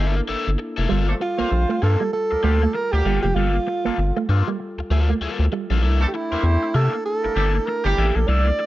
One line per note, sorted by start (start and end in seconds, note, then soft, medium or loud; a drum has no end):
0.00 0.21 G1 loud
0.00 0.20 A#3 medium
0.00 0.86 A#3 medium
0.00 0.86 D4 medium
0.00 0.16 E4 medium
0.00 0.86 E4 medium
0.00 0.15 A4 medium
0.00 0.87 A4 medium
0.16 muted overdriven electric guitar stroke soft
0.28 0.36 G1 soft
0.28 0.48 A#3 medium
0.28 0.48 E4 medium
0.28 0.48 A4 loud
0.48 0.57 G1 medium
0.58 muted overdriven electric guitar stroke soft
0.77 0.87 F1 medium
0.77 0.88 A#3 medium
0.77 0.88 E4 medium
0.77 0.88 A4 medium
0.89 1.14 G1 loud
0.89 1.02 G3 medium
0.89 5.78 G3 medium
0.89 1.09 A#3 medium
0.89 5.78 F4 medium
0.89 1.08 F4 medium
0.89 8.66 A4 medium
0.89 1.07 A4 medium
1.08 1.16 F3 medium
1.08 1.15 A3 medium
1.08 1.15 D4 medium
1.08 1.15 A4 medium
1.08 muted overdriven electric guitar stroke medium
1.20 1.84 F4 medium
1.20 muted clean electric guitar stroke soft
1.20 muted overdriven electric guitar stroke soft
1.38 1.44 A#1 soft
1.38 1.79 A3 medium
1.38 1.47 A#3 medium
1.38 1.50 A#3 medium
1.38 1.79 C4 medium
1.38 1.79 F4 medium
1.38 1.50 F4 medium
1.38 1.49 A#4 medium
1.38 1.79 C5 medium
1.52 1.66 A#1 loud
1.52 muted overdriven electric guitar stroke soft
1.69 1.78 A3 medium
1.69 muted overdriven electric guitar stroke medium
1.82 1.97 G2 loud
1.82 2.02 A#3 medium
1.82 2.00 F4 medium
1.82 2.13 A4 medium
1.82 1.99 A4 medium
1.82 muted clean electric guitar stroke soft
2.00 2.09 G3 medium
2.00 muted overdriven electric guitar stroke soft
2.13 2.76 A4 medium
2.13 muted clean electric guitar stroke soft
2.30 2.37 D2 medium
2.30 2.41 F3 medium
2.30 2.41 A#3 medium
2.30 2.41 D4 medium
2.30 2.41 A#4 medium
2.30 muted overdriven electric guitar stroke soft
2.43 2.67 D2 medium
2.43 2.54 D3 medium
2.43 2.54 G3 medium
2.43 2.57 A3 medium
2.43 2.63 A#3 medium
2.43 2.54 A#3 medium
2.43 2.62 F4 medium
2.43 2.54 G4 medium
2.43 2.61 A4 medium
2.62 2.71 A3 medium
2.62 muted overdriven electric guitar stroke soft
2.74 2.94 A#4 loud
2.74 muted overdriven electric guitar stroke soft
2.74 muted clean electric guitar stroke soft
2.92 3.02 D2 medium
2.92 3.18 D3 loud
2.92 3.18 G3 loud
2.92 3.18 A#3 loud
2.92 3.22 G4 medium
2.92 3.18 G4 loud
2.92 muted overdriven electric guitar stroke soft
3.05 3.19 G1 medium
3.05 3.19 G3 medium
3.05 3.25 A#3 medium
3.05 3.23 F4 medium
3.05 3.23 A4 medium
3.23 3.33 F1 medium
3.23 3.33 F3 medium
3.23 3.36 G4 loud
3.23 muted overdriven electric guitar stroke soft
3.35 3.59 G1 loud
3.35 3.49 G3 loud
3.35 3.56 A#3 medium
3.35 4.28 F4 medium
3.35 3.55 F4 medium
3.35 3.54 A4 medium
3.55 muted overdriven electric guitar stroke soft
3.67 muted overdriven electric guitar stroke soft
3.67 muted clean electric guitar stroke soft
3.85 3.91 G1 medium
3.85 3.94 A#3 medium
3.85 3.97 A#3 medium
3.85 3.96 F4 medium
3.85 3.96 A4 medium
3.98 4.12 G1 loud
3.98 muted overdriven electric guitar stroke medium
4.16 4.25 A3 medium
4.16 muted overdriven electric guitar stroke soft
4.29 4.43 G2 loud
4.29 4.48 A#3 medium
4.29 4.48 F4 loud
4.29 4.47 A4 medium
4.29 muted clean electric guitar stroke soft
4.48 4.56 G3 medium
4.48 muted overdriven electric guitar stroke soft
4.60 muted clean electric guitar stroke soft
4.78 4.83 D2 soft
4.78 muted overdriven electric guitar stroke medium
4.90 5.14 D2 medium
4.90 5.04 A3 medium
4.90 5.12 A#3 medium
4.90 5.10 F4 medium
4.90 5.09 A4 medium
5.10 5.18 A3 medium
5.10 muted overdriven electric guitar stroke soft
5.21 5.28 D2 soft
5.21 5.43 A#3 medium
5.21 5.44 F4 medium
5.21 5.44 A4 medium
5.21 muted clean electric guitar stroke soft
5.39 5.48 D2 loud
5.52 5.65 G3 medium
5.52 muted overdriven electric guitar stroke soft
5.70 5.84 A#1 loud
5.70 5.79 F3 medium
5.70 5.81 A#3 medium
5.70 5.81 F4 medium
5.70 5.81 A4 medium
5.81 6.06 C2 loud
5.81 8.66 A3 medium
5.81 6.02 A#3 medium
5.81 8.66 D4 medium
5.81 8.66 E4 medium
5.81 6.02 E4 medium
5.81 6.01 A4 medium
6.00 6.07 E3 medium
6.00 6.08 A3 medium
6.00 6.08 D4 medium
6.00 6.08 A4 loud
6.00 muted overdriven electric guitar stroke soft
6.08 6.16 G4 medium
6.14 6.77 E4 loud
6.14 muted overdriven electric guitar stroke soft
6.31 6.37 E2 soft
6.31 6.71 A3 medium
6.31 6.43 A#3 medium
6.31 6.71 C4 medium
6.31 6.43 E4 medium
6.31 6.71 G4 medium
6.31 6.42 A#4 medium
6.31 6.71 C5 loud
6.43 6.58 E2 loud
6.43 muted overdriven electric guitar stroke medium
6.63 muted overdriven electric guitar stroke soft
6.75 6.89 C3 loud
6.75 6.94 A#3 medium
6.75 6.93 E4 medium
6.75 7.05 A4 medium
6.75 6.92 A4 medium
6.94 muted overdriven electric guitar stroke soft
7.06 7.68 A4 loud
7.22 7.29 G1 soft
7.22 7.33 G3 medium
7.22 7.33 A#3 medium
7.22 7.33 E4 medium
7.22 7.33 A#4 medium
7.22 muted overdriven electric guitar stroke soft
7.35 7.60 G1 medium
7.35 7.46 E3 medium
7.35 7.46 G3 medium
7.35 7.56 A#3 medium
7.35 7.46 D4 medium
7.35 7.55 E4 medium
7.35 7.46 G4 loud
7.35 7.54 A4 medium
7.55 muted overdriven electric guitar stroke soft
7.66 7.87 A#4 medium
7.66 muted overdriven electric guitar stroke medium
7.84 7.94 G1 medium
7.84 8.09 E3 medium
7.84 8.09 G3 loud
7.84 8.09 D4 loud
7.84 8.09 G4 loud
7.84 8.17 G4 loud
7.84 muted overdriven electric guitar stroke medium
7.98 8.12 A1 medium
7.98 8.17 A#3 medium
7.98 8.16 E4 medium
7.98 8.15 A4 medium
8.15 8.25 A#1 medium
8.15 8.29 A4 medium
8.15 muted overdriven electric guitar stroke medium
8.28 8.52 C2 loud
8.28 8.48 A#3 medium
8.28 8.47 E4 medium
8.28 8.46 A4 loud
8.28 8.66 D5 loud
8.47 muted overdriven electric guitar stroke medium
8.59 muted overdriven electric guitar stroke soft